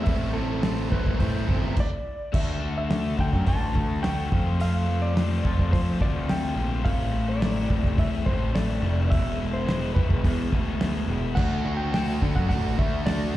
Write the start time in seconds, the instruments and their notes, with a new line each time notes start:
0.04 picked electric bass A1, overdriven electric guitar A2 E3 A3 C4, electric slide guitar E5, kick, open hi-hat
0.08 overdriven electric guitar E4
0.33 overdriven electric guitar A2 E3 A3 C4 E4, electric slide guitar A4
0.62 overdriven electric guitar A2 E3 A3 C4 E4, snare, open hi-hat
0.91 picked electric bass A1, overdriven electric guitar A2 E3 A3 C4 E4, electric slide guitar B4, kick
1.06 picked electric bass A1, kick
1.18 overdriven electric guitar A2 E3 A3 C4 E4, picked electric bass A2, electric slide guitar C5, kick, open hi-hat
1.47 picked electric bass G1, overdriven electric guitar A2 E3 A3 C4 E4, kick
1.77 electric slide guitar D5, kick, crash
2.32 picked electric bass D2, overdriven electric guitar D3 A3 D4 F#4, electric slide guitar E5, kick, crash
2.60 overdriven electric guitar D3 A3 D4 F#4
2.78 electric slide guitar E5
2.88 overdriven electric guitar D3 A3 D4 F#4, snare, open hi-hat
3.17 overdriven electric guitar D3 A3 D4 F#4, picked electric bass D3, electric slide guitar G5, kick
3.33 picked electric bass F#2, kick, snare
3.46 picked electric bass A1, overdriven electric guitar D3 A3 D4 F#4, electric slide guitar A5, kick, open hi-hat
3.73 picked electric bass D2, overdriven electric guitar D3 A3 D4 F#4, kick
4.01 overdriven electric guitar D3 A3 D4 F#4, electric slide guitar G5, snare, open hi-hat
4.19 snare
4.30 overdriven electric guitar F2 C3 F3 A3 C4 F4, picked electric bass F2, kick
4.58 overdriven electric guitar F2 C3 F3 A3 C4 F4, electric slide guitar F5, open hi-hat
4.85 overdriven electric guitar F2 C3 F3 A3 C4 F4
5.02 electric slide guitar D5
5.14 overdriven electric guitar F2 C3 F3 A3 C4 F4, snare, open hi-hat
5.41 overdriven electric guitar F2 C3 F3 A3 C4 F4, picked electric bass F2, kick
5.59 picked electric bass F2, kick, snare
5.70 overdriven electric guitar F2 C3 F3 A3 C4 F4, picked electric bass F3, electric slide guitar C5, kick
5.74 open hi-hat
5.98 picked electric bass D2, overdriven electric guitar F2 C3 F3 A3 C4 F4, electric slide guitar D5, kick
6.26 overdriven electric guitar F2 C3 F3 A3 C4 F4, snare, open hi-hat
6.30 electric slide guitar G5
6.44 snare
6.54 picked electric bass A#1, overdriven electric guitar F2 C3 F3 A3 C4 F4
6.83 picked electric bass A1, overdriven electric guitar A2 E3 A3 C4 E4, electric slide guitar F5, kick, open hi-hat
7.12 overdriven electric guitar A2 E3 A3 C4 E4
7.29 electric slide guitar D5
7.41 overdriven electric guitar A2 E3 A3 C4 E4, snare, open hi-hat
7.69 overdriven electric guitar A2 E3 A3 C4 E4, picked electric bass A2, kick
7.84 picked electric bass C2, kick, snare
7.97 picked electric bass E2, overdriven electric guitar A2 E3 A3 C4 E4, electric slide guitar E5, kick, open hi-hat
8.24 picked electric bass A1, overdriven electric guitar A2 E3 A3 C4 E4, electric slide guitar C5, kick
8.53 overdriven electric guitar A2 E3 A3 C4 E4, electric slide guitar D5, snare, open hi-hat
8.69 snare
8.81 picked electric bass F1, overdriven electric guitar A2 E3 A3 C4 E4
9.10 picked electric bass E1, overdriven electric guitar E2 B2 E3 G#3 B3 E4, electric slide guitar E5, kick, open hi-hat
9.38 overdriven electric guitar E2 B2 E3 G#3 B3 E4
9.53 electric slide guitar C5
9.65 overdriven electric guitar E2 B2 E3 G#3 B3 E4, snare, open hi-hat
9.93 picked electric bass E1, overdriven electric guitar E2 B2 E3 G#3 B3 E4, electric slide guitar B4, kick
10.10 picked electric bass E1, kick
10.23 overdriven electric guitar E2 B2 E3 G#3 B3 E4, picked electric bass E2, kick, open hi-hat
10.51 picked electric bass D2, overdriven electric guitar E2 B2 E3 G#3 B3 E4, kick
10.79 overdriven electric guitar E2 B2 E3 G#3 B3 E4, snare, open hi-hat
11.08 picked electric bass E1, overdriven electric guitar E2 B2 E3 G#3 B3 E4
11.35 picked electric bass D2, overdriven electric guitar D3 A3 D4 F#4, electric slide guitar F#5, kick, crash
11.64 overdriven electric guitar D3 A3 D4 F#4
11.77 electric slide guitar G5
11.93 overdriven electric guitar D3 A3 D4 F#4, electric slide guitar G5, snare, open hi-hat
12.21 overdriven electric guitar D3 A3 D4 F#4, picked electric bass D3, kick
12.36 picked electric bass F#2, electric slide guitar F#5, kick, snare
12.48 picked electric bass A1, overdriven electric guitar D3 A3 D4 F#4, electric slide guitar F#5, kick, open hi-hat
12.77 picked electric bass D2, overdriven electric guitar D3 A3 D4 F#4, electric slide guitar E5, kick
13.06 overdriven electric guitar D3 A3 D4 F#4, electric slide guitar D5, snare, open hi-hat
13.22 snare
13.33 overdriven electric guitar F2 C3